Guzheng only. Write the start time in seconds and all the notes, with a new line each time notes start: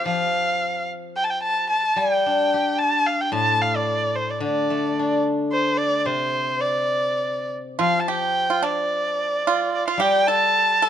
Already playing: C4 F4 G4
0.06 F3
1.96 G3
2.26 D4
2.54 G4
3.32 A2
4.40 D3
4.70 A3
4.99 D4
6.05 C3
7.79 F3
9.98 G3